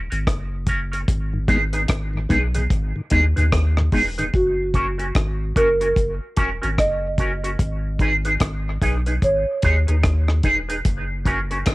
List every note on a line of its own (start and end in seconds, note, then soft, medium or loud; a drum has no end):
0.10 0.26 G#1 loud
0.10 0.17 C#4 soft
0.10 0.17 F#4 medium
0.10 0.17 A#4 medium
0.10 closed hi-hat soft
0.27 1.05 F#1 loud
0.27 kick loud
0.27 cross-stick loud
0.27 closed hi-hat medium
0.67 0.79 C#4 medium
0.67 0.80 F#4 medium
0.67 0.80 A#4 medium
0.67 kick medium
0.67 closed hi-hat medium
0.92 0.98 C#4 medium
0.92 0.98 F#4 medium
0.92 0.98 A#4 medium
0.92 closed hi-hat medium
1.08 1.86 G#1 loud
1.08 kick loud
1.08 closed hi-hat medium
1.33 1.39 G#2 medium
1.33 1.39 D#3 medium
1.48 1.57 G#3 medium
1.48 1.58 B3 medium
1.48 1.60 D#4 medium
1.48 1.58 D#4 medium
1.48 1.60 G#4 medium
1.48 1.61 B4 medium
1.48 kick medium
1.48 closed hi-hat medium
1.73 1.80 D#4 soft
1.73 1.80 G#4 medium
1.73 1.79 B4 medium
1.73 closed hi-hat soft
1.88 2.27 G#1 medium
1.88 kick loud
1.88 cross-stick loud
1.88 closed hi-hat loud
2.13 2.20 G#2 medium
2.13 2.20 D#3 medium
2.29 2.67 B1 loud
2.29 2.39 G#3 medium
2.29 2.39 B3 medium
2.29 2.42 D#4 medium
2.29 2.39 D#4 medium
2.29 2.42 G#4 medium
2.29 2.42 B4 medium
2.29 kick medium
2.29 closed hi-hat medium
2.55 2.61 G#2 medium
2.55 2.61 D#3 medium
2.55 2.61 D#4 soft
2.55 2.61 G#4 medium
2.55 2.61 B4 medium
2.55 closed hi-hat medium
2.70 2.94 G#1 medium
2.70 kick loud
2.70 closed hi-hat medium
2.96 3.01 G#2 medium
2.96 3.02 D#3 medium
3.10 3.34 D#2 medium
3.10 3.21 G#3 medium
3.10 3.21 B3 medium
3.10 3.23 D#4 medium
3.10 3.21 D#4 medium
3.10 3.24 G#4 medium
3.10 3.24 B4 medium
3.10 kick loud
3.10 closed hi-hat medium
3.36 3.51 D#2 medium
3.36 3.42 G#2 medium
3.36 3.42 D#3 medium
3.36 3.43 D#4 soft
3.36 3.42 G#4 medium
3.36 3.42 B4 medium
3.36 closed hi-hat medium
3.52 3.89 D#2 medium
3.52 kick medium
3.52 cross-stick loud
3.52 closed hi-hat medium
3.77 3.83 G#2 medium
3.77 3.83 D#3 medium
3.77 cross-stick medium
3.92 4.30 E1 loud
3.92 4.02 G#3 medium
3.92 4.02 B3 medium
3.92 4.05 D#4 medium
3.92 4.02 D#4 medium
3.92 4.05 G#4 medium
3.92 4.05 B4 medium
3.92 kick medium
3.92 open hi-hat medium
4.18 4.24 G#2 medium
4.18 4.24 D#3 medium
4.18 4.24 D#4 medium
4.18 4.24 G#4 medium
4.18 4.24 B4 medium
4.18 closed hi-hat medium
4.33 5.11 F#1 medium
4.33 5.60 F#4 medium
4.33 kick loud
4.33 closed hi-hat medium
4.74 4.86 C#4 medium
4.74 4.86 F#4 medium
4.74 4.87 A#4 medium
4.74 kick medium
4.74 closed hi-hat medium
4.98 5.05 C#4 soft
4.98 5.05 F#4 medium
4.98 5.05 A#4 medium
4.98 closed hi-hat soft
5.15 5.52 G#1 loud
5.15 kick loud
5.15 cross-stick loud
5.15 closed hi-hat medium
5.56 5.93 F#1 medium
5.56 5.68 C#4 medium
5.56 5.68 F#4 medium
5.56 5.68 A#4 medium
5.56 6.75 A#4 medium
5.56 kick medium
5.56 closed hi-hat medium
5.81 5.87 C#4 soft
5.81 5.87 F#4 medium
5.81 5.87 A#4 medium
5.81 closed hi-hat medium
5.96 6.19 F#1 medium
5.96 kick loud
5.96 closed hi-hat medium
6.37 6.60 E1 medium
6.37 6.49 C#4 medium
6.37 6.49 F#4 medium
6.37 6.50 A#4 medium
6.37 kick medium
6.37 closed hi-hat medium
6.62 6.77 G#1 medium
6.62 6.68 C#4 medium
6.62 6.68 F#4 medium
6.62 6.68 A#4 medium
6.62 closed hi-hat medium
6.78 7.56 F#1 medium
6.78 7.62 D#5 medium
6.78 kick medium
6.78 cross-stick loud
6.78 closed hi-hat medium
7.18 7.31 C#4 medium
7.18 7.31 F#4 medium
7.18 7.31 A#4 medium
7.18 kick medium
7.18 closed hi-hat medium
7.44 7.50 C#4 medium
7.44 7.50 F#4 medium
7.44 7.50 A#4 medium
7.44 closed hi-hat medium
7.59 8.37 G#1 loud
7.59 kick loud
7.59 closed hi-hat medium
7.99 8.12 D#4 medium
7.99 8.13 G#4 medium
7.99 8.13 B4 medium
7.99 kick medium
7.99 closed hi-hat medium
8.25 8.32 D#4 medium
8.25 8.31 G#4 medium
8.25 8.31 B4 medium
8.25 closed hi-hat soft
8.40 8.78 G#1 medium
8.40 kick loud
8.40 cross-stick loud
8.40 closed hi-hat loud
8.82 9.19 B1 medium
8.82 8.94 D#4 medium
8.82 8.94 G#4 medium
8.82 8.94 B4 medium
8.82 kick medium
8.82 closed hi-hat medium
9.06 9.13 D#4 soft
9.06 9.13 G#4 medium
9.06 9.12 B4 medium
9.06 closed hi-hat soft
9.22 9.45 G#1 medium
9.22 10.41 C#5 medium
9.22 kick medium
9.22 closed hi-hat medium
9.62 9.86 D#2 medium
9.62 9.75 D#4 medium
9.62 9.76 G#4 medium
9.62 9.76 B4 medium
9.62 kick medium
9.62 closed hi-hat medium
9.87 10.03 D#2 medium
9.87 9.94 D#4 medium
9.87 9.94 G#4 medium
9.87 9.94 B4 medium
9.87 closed hi-hat medium
10.03 10.41 D#2 medium
10.03 kick loud
10.03 cross-stick loud
10.03 closed hi-hat medium
10.28 cross-stick medium
10.43 10.81 E1 loud
10.43 10.56 D#4 medium
10.43 10.57 G#4 medium
10.43 10.57 B4 loud
10.43 kick medium
10.43 closed hi-hat medium
10.69 10.76 D#4 medium
10.69 10.75 G#4 medium
10.69 10.75 B4 medium
10.69 closed hi-hat medium
10.85 11.63 F#1 medium
10.85 kick loud
10.85 closed hi-hat medium
11.25 11.38 C#4 medium
11.25 11.38 F#4 medium
11.25 11.38 A#4 medium
11.25 kick medium
11.25 closed hi-hat medium
11.51 11.57 C#4 medium
11.51 11.57 F#4 medium
11.51 11.57 A#4 medium
11.51 closed hi-hat soft
11.66 11.75 G#1 medium
11.66 kick loud
11.66 cross-stick medium
11.66 closed hi-hat loud